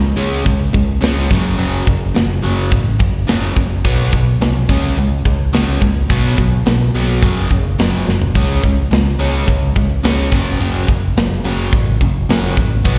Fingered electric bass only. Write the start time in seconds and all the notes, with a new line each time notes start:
Already playing: C#2
0.17 C#2
0.46 C#2
0.75 C#2
1.02 C#2
1.31 F#1
1.59 F#1
1.87 F#1
2.15 F#1
2.44 F#1
2.71 A1
3.00 F#1
3.28 F#1
3.56 F#1
3.85 B1
4.13 B1
4.40 C2
4.69 C#2
4.97 C#2
5.25 C#2
5.54 C#2
5.82 C#2
6.10 B1
6.38 B1
6.66 B1
6.94 B1
7.23 F#1
7.50 F#1
7.79 F#1
8.08 F#1
8.35 C#2
8.63 C#2
8.92 C#2
9.19 C#2
9.48 C#2
9.76 C#2
10.04 C#2
10.32 F#1
10.59 F#1
10.89 F#1
11.15 F#1
11.43 F#1
11.73 A1
12.01 F#1
12.29 F#1
12.57 A1
12.85 B1